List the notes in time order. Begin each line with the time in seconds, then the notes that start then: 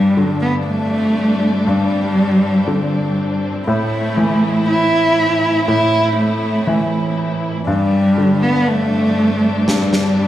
Already playing: G2 G3 C4 D4
0.17 D3
0.42 B3
0.66 A3
1.66 G2 G3
2.67 D3
3.67 A2 A3 E4
4.17 E3
4.69 E4
5.68 A2 E4
6.18 A3
6.67 E3
7.67 G2 G3 C4 D4
8.18 D3
8.43 B3
8.68 A3
9.68 G2 G3, snare
9.93 snare